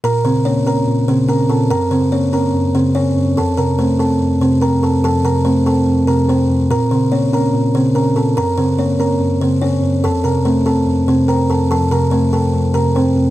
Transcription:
X:1
M:4/4
L:1/8
Q:1/4=144
K:Bbm
V:1 name="Kalimba"
[Bb] [Cc] [Dd] [Bb]2 [Cc] [Bb] [=A=a] | [Bb] [Cc] [Dd] [Bb]2 [Cc] [Dd] z | [=A=a] [Bb] [Cc] [Aa]2 [Cc] [Bb] [Aa] | [=A=a] [Bb] [Cc] [Aa]2 [Bb] [Cc] z |
[Bb] [Cc] [Dd] [Bb]2 [Cc] [Bb] [=A=a] | [Bb] [Cc] [Dd] [Bb]2 [Cc] [Dd] z | [=A=a] [Bb] [Cc] [Aa]2 [Cc] [Bb] [Aa] | [=A=a] [Bb] [Cc] [Aa]2 [Bb] [Cc] z |]
V:2 name="Tine electric piano" clef=bass
B,, D, B, D B,, D, D B,, | G,, D, B, D G,, D, D G,, | F,, C, =A, C F,, C, C F,, | F,, C, =A, C F,, C, C F,, |
B,, D, B, D B,, D, D B,, | G,, D, B, D G,, D, D G,, | F,, C, =A, C F,, C, C F,, | F,, C, =A, C F,, C, C F,, |]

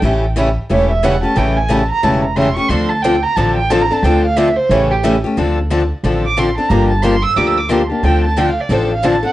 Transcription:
X:1
M:4/4
L:1/8
Q:"Swing" 1/4=180
K:Dm
V:1 name="Violin"
g2 z2 ^c e ^f a | g ^g a b a b c' ^c' | c' a g b a g (3a b a | g f e c ^c G z2 |
z4 z d' c' a | b a c' e' (3d' e' d' c' a | g a (3g f d c f a ^f |]
V:2 name="Steel-string acoustic guitar"
[^C,E,A,^CG] z [C,E,A,CG] z [C,E,A,CG] z [C,E,A,CG] [A,CG] | [^C,E,A,^CG] z [C,E,A,CG] z [C,E,A,CG] z [C,E,A,CG] [A,CG] | [D,F,CDA] z [D,F,CDA] z [D,F,CDA] z [D,F,CDA] [CDA] | [D,F,CDA] z [D,F,CDA] z [^C,E,A,^CG] z [C,E,A,CG] [A,CG] |
[D,F,CDA] z [D,F,CDA] z [D,F,CDA] z [D,F,CDA] [CDA] | [D,F,B,DG] z [D,F,B,DG] z [D,F,B,DG] z [D,F,B,DG] [B,DG] | [D,F,CDA] z [D,F,CDA] z [D,F,CDA] z [D,F,CDA] [CDA] |]
V:3 name="Steel-string acoustic guitar"
[E,G,^CEA] z [E,G,CEA] z [E,G,CEA] z [E,G,CEA] z | [E,G,^CEA] z [E,G,CEA] z [E,G,CEA] z [E,G,CEA] z | [D,F,CDA] z [D,F,CDA] z [D,F,CDA] z [D,F,CDA] z | [D,F,CDA] z [D,F,CDA] z [E,G,^CEA] z [E,G,CEA] z |
[D,F,CDA] z [D,F,CDA] z [D,F,CDA] z [D,F,CDA] z | [D,F,B,DG] z [D,F,B,DG] z [D,F,B,DG] z [D,F,B,DG] z | [D,F,CDA] z [D,F,CDA] z [D,F,CDA] z [D,F,CDA] z |]
V:4 name="Upright bass" clef=bass
A,,,4 E,,,4 | A,,,4 E,,,4 | D,,4 A,,,4 | D,,4 A,,,4 |
D,,4 A,,,4 | G,,,4 D,,4 | D,,4 A,,,4 |]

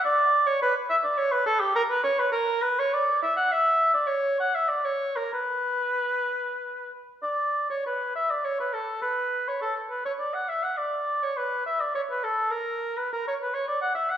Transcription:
X:1
M:3/4
L:1/16
Q:1/4=103
K:Bm
V:1 name="Oboe"
d3 c B2 e d c B A G | ^A B c B A2 B c d2 e f | e3 d c2 f e d c2 ^A | B8- B2 z2 |
d3 c B2 e d c B A2 | B3 c A2 B c d f e f | d3 c B2 e d c B A2 | ^A3 B A c B c d f e f |]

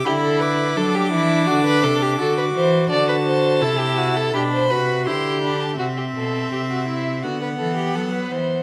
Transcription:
X:1
M:4/4
L:1/16
Q:1/4=83
K:C
V:1 name="Violin"
b2 d'12- d'2 | a8 b4 c'2 b a | e8 ^f8 |]
V:2 name="Violin"
G A B2 A G E2 ^F B A G A B c2 | d B c2 A G ^F A G c B2 G4 | ^F G A2 G F E2 F B A G A B c2 |]
V:3 name="Viola"
E4 D8 ^F4 | ^F4 E4 D2 F2 E2 D2 | C8 B,8 |]
V:4 name="Cello" clef=bass
D,4 ^F,2 E,2 D,2 C,2 D,2 E,2 | D,4 C,4 B,,2 C,2 D,4 | C,2 B,,2 C,4 D,2 E,2 ^F,2 E,2 |]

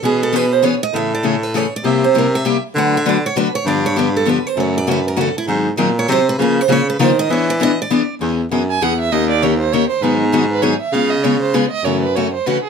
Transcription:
X:1
M:3/4
L:1/16
Q:"Swing" 1/4=198
K:E
V:1 name="Steel-string acoustic guitar"
G2 A2 B2 =c2 ^c2 d2 | [K:Emix] e2 d2 c2 B2 c2 d2 | e2 =c2 _B2 e4 z2 | f2 e2 d2 c2 B2 c2 |
d2 c2 B2 A2 B2 =c2 | c2 d2 B2 _B2 A2 E2 | z6 c2 ^B2 =B2 | ^A2 =c2 ^c2 B2 =c2 ^d2 |
c2 d2 ^d2 =d4- d z | [K:E] z12 | z12 | z12 |
z12 | z12 |]
V:2 name="Violin"
z12 | [K:Emix] z12 | z12 | z12 |
z12 | z12 | z12 | z12 |
z12 | [K:E] z6 g2 f2 e2 | d2 =d2 c2 =c2 ^c2 =c2 | B2 D2 F2 B2 c2 e2 |
^e2 d2 c2 =c2 B2 d2 | c2 B2 c2 =c2 B2 G2 |]
V:3 name="Steel-string acoustic guitar"
[E,B,CG]2 z2 [E,B,CG]2 z2 [E,B,CG]2 z2 | [K:Emix] [C,E,A,CG]2 z2 [C,E,A,CG]2 z2 [C,E,A,CG]2 z2 | [=C,=G,_B,E=G]2 z2 [C,G,B,EG]2 z2 [C,G,B,EG]2 z2 | [D,F,A,DFB]2 z2 [D,F,A,DFB]2 z2 [D,F,A,DFB]2 z2 |
[D,=F,B,D=G]2 z2 [D,F,B,DG]2 z2 [D,F,B,DG]2 z2 | [C,E,A,CF]2 z2 [C,E,A,CF]2 z2 [C,E,A,CF]2 z2 | [^D,F,^B,^DG]2 z2 [D,F,B,DG]2 z2 [D,F,B,DG]2 z2 | [C,^E,^A,^EG]2 z2 [C,E,A,EG]2 z2 [C,E,A,EG]2 z2 |
[E,B,DG]2 z2 [E,B,DG]2 z2 [E,B,DG]2 z2 | [K:E] [E,B,CG]2 z2 [E,B,CG]2 z2 [E,B,CG]2 z2 | [D,^A,C=G^A]2 z2 [D,A,CGA]2 z2 [D,A,CGA]2 z2 | [D,F,B,DG]2 z2 [D,F,B,DG]2 z2 [D,F,B,DG]2 z2 |
[C,G,B,^EG]2 z2 [C,G,B,EG]2 z2 [C,G,B,EG]2 z2 | [C,E,A,CF]2 z2 [C,E,A,CF]2 z2 [C,E,A,CF]2 z2 |]
V:4 name="Baritone saxophone" clef=bass
B,,12 | [K:Emix] A,,12 | =C,12 | D,8 z4 |
=G,,12 | F,,12 | G,,4 _B,,4 ^B,,4 | C,4 C,4 ^D,4 |
E,8 z4 | [K:E] E,,4 F,,4 E,,4 | D,,12 | G,,12 |
C,12 | F,,8 z4 |]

